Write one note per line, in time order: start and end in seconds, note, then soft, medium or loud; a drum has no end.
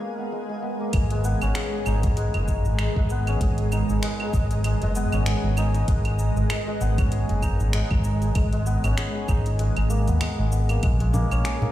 0.00 0.31 G#3 medium
0.00 10.83 G#3 medium
0.00 0.24 A#3 medium
0.00 1.42 C#4 medium
0.00 1.86 D#4 medium
0.00 0.95 G#4 medium
0.00 1.55 G#4 medium
0.00 11.72 G#4 medium
0.00 11.72 A#4 medium
0.00 10.83 B4 medium
0.00 2.46 F5 medium
0.18 0.62 B3 medium
0.32 0.48 G#3 medium
0.49 0.93 G#3 medium
0.62 0.87 B3 medium
0.81 1.31 A#3 medium
0.93 1.34 G#1 medium
0.93 1.10 G#3 medium
0.93 kick loud
0.93 closed hi-hat medium
0.93 cabasa soft
0.93 claves medium
1.10 2.16 G#3 medium
1.10 closed hi-hat soft
1.24 3.10 B3 loud
1.24 cabasa medium
1.41 1.51 G#1 medium
1.41 3.28 C#4 loud
1.41 cabasa soft
1.41 claves medium
1.55 1.72 G#4 loud
1.55 finger snap loud
1.55 closed hi-hat medium
1.55 cabasa soft
1.73 3.42 G#4 medium
1.86 2.26 G#1 medium
1.86 2.03 D#4 loud
1.86 cabasa medium
1.86 claves medium
1.98 11.72 D#5 loud
2.03 2.48 D#4 medium
2.03 kick loud
2.03 closed hi-hat soft
2.03 cabasa soft
2.17 2.33 G#3 loud
2.17 closed hi-hat medium
2.17 cabasa soft
2.34 2.55 F#1 medium
2.34 2.65 G#3 medium
2.34 closed hi-hat soft
2.34 claves medium
2.48 3.72 D#4 medium
2.48 kick medium
2.48 cabasa medium
2.65 2.86 G#1 medium
2.65 2.79 G#3 medium
2.65 cabasa soft
2.79 2.96 G#3 medium
2.79 finger snap medium
2.79 closed hi-hat medium
2.79 cabasa soft
2.79 claves medium
2.96 3.34 G#1 loud
2.96 4.02 G#3 loud
2.96 kick loud
3.10 4.95 B3 loud
3.10 cabasa medium
3.27 5.13 C#4 loud
3.27 closed hi-hat soft
3.27 cabasa soft
3.27 claves medium
3.41 3.81 G#1 loud
3.41 3.59 G#4 loud
3.41 kick loud
3.41 closed hi-hat medium
3.41 cabasa soft
3.58 5.26 G#4 medium
3.58 closed hi-hat soft
3.72 3.90 D#4 loud
3.72 cabasa medium
3.72 claves medium
3.89 3.99 G#1 medium
3.89 4.34 D#4 medium
3.89 cabasa soft
4.03 4.20 G#3 loud
4.03 finger snap loud
4.03 closed hi-hat medium
4.03 cabasa soft
4.20 4.50 G#3 medium
4.20 claves medium
4.33 4.74 G#1 medium
4.33 5.57 D#4 medium
4.33 kick loud
4.33 cabasa medium
4.51 4.64 G#3 medium
4.51 closed hi-hat soft
4.51 cabasa soft
4.64 4.82 G#3 medium
4.64 closed hi-hat medium
4.64 cabasa soft
4.64 claves medium
4.82 5.02 F#1 medium
4.82 5.87 G#3 loud
4.82 closed hi-hat soft
4.95 6.81 B3 loud
4.95 cabasa medium
5.12 5.33 G#1 medium
5.12 6.98 C#4 medium
5.12 cabasa soft
5.12 claves medium
5.26 5.44 G#4 loud
5.26 finger snap loud
5.26 closed hi-hat medium
5.26 cabasa soft
5.44 5.82 G#1 loud
5.44 7.12 G#4 medium
5.57 5.75 D#4 loud
5.57 cabasa medium
5.57 claves medium
5.75 6.19 D#4 medium
5.75 closed hi-hat soft
5.75 cabasa soft
5.88 6.28 G#1 loud
5.88 6.05 G#3 loud
5.88 kick loud
5.88 closed hi-hat medium
5.88 cabasa soft
6.05 6.36 G#3 medium
6.05 closed hi-hat soft
6.05 claves medium
6.19 7.42 D#4 medium
6.19 cabasa medium
6.36 6.46 G#1 medium
6.36 6.49 G#3 medium
6.36 cabasa soft
6.50 6.66 G#3 medium
6.50 finger snap loud
6.50 closed hi-hat medium
6.50 cabasa soft
6.50 claves medium
6.68 7.73 G#3 loud
6.81 7.21 G#1 medium
6.81 8.66 B3 loud
6.81 cabasa medium
6.98 8.84 C#4 loud
6.98 kick loud
6.98 closed hi-hat soft
6.98 cabasa soft
6.98 claves medium
7.12 7.29 G#4 medium
7.12 closed hi-hat medium
7.12 cabasa soft
7.29 7.50 F#1 medium
7.29 8.97 G#4 medium
7.29 closed hi-hat soft
7.43 7.60 D#4 loud
7.43 kick medium
7.43 cabasa medium
7.43 claves medium
7.60 7.81 G#1 medium
7.60 8.05 D#4 medium
7.60 cabasa soft
7.73 7.90 G#3 loud
7.73 finger snap loud
7.73 closed hi-hat medium
7.73 cabasa soft
7.91 8.29 G#1 loud
7.91 8.21 G#3 medium
7.91 kick loud
7.91 claves medium
8.04 9.28 D#4 medium
8.04 cabasa medium
8.22 8.35 G#3 medium
8.22 closed hi-hat soft
8.22 cabasa soft
8.35 8.76 G#1 medium
8.35 8.52 G#3 medium
8.35 kick loud
8.35 closed hi-hat medium
8.35 cabasa soft
8.35 claves medium
8.53 9.58 G#3 loud
8.53 closed hi-hat soft
8.66 9.96 B3 loud
8.66 cabasa medium
8.84 8.93 G#1 medium
8.84 11.31 C#4 medium
8.84 closed hi-hat soft
8.84 cabasa soft
8.84 claves medium
8.98 9.15 G#4 loud
8.98 finger snap loud
8.98 closed hi-hat medium
8.98 cabasa soft
9.15 11.44 G#4 medium
9.28 9.68 G#1 medium
9.28 9.46 D#4 loud
9.28 kick loud
9.28 cabasa medium
9.28 claves medium
9.46 11.72 D#4 medium
9.46 closed hi-hat soft
9.46 cabasa soft
9.59 9.75 G#3 medium
9.59 closed hi-hat medium
9.59 cabasa soft
9.76 10.10 G#1 loud
9.76 10.20 G#3 medium
9.76 closed hi-hat soft
9.76 claves medium
9.90 10.13 A#3 medium
9.90 cabasa medium
10.07 10.17 D#2 medium
10.07 10.52 B3 medium
10.07 closed hi-hat soft
10.07 cabasa soft
10.21 10.38 G#3 medium
10.21 finger snap loud
10.21 closed hi-hat medium
10.21 cabasa soft
10.21 claves medium
10.39 10.77 G#1 loud
10.39 10.82 G#3 medium
10.52 10.76 B3 medium
10.52 cabasa medium
10.69 11.13 A#3 medium
10.69 closed hi-hat soft
10.69 cabasa soft
10.69 claves medium
10.83 11.23 A#1 loud
10.83 11.72 A#2 medium
10.83 10.99 G#3 medium
10.83 11.72 A#4 medium
10.83 kick loud
10.83 closed hi-hat medium
10.83 cabasa soft
10.83 claves medium
10.94 11.72 A#3 medium
11.00 11.72 G#3 loud
11.00 closed hi-hat soft
11.13 11.61 A#3 loud
11.13 high bongo medium
11.13 low conga medium
11.13 cabasa medium
11.26 11.72 F4 medium
11.31 11.41 A#1 medium
11.31 11.72 C#4 loud
11.31 11.72 C#5 medium
11.31 cabasa soft
11.31 claves medium
11.44 11.72 G#4 loud
11.44 finger snap medium
11.44 closed hi-hat medium
11.44 cabasa soft
11.62 11.72 A#3 medium
11.62 low conga loud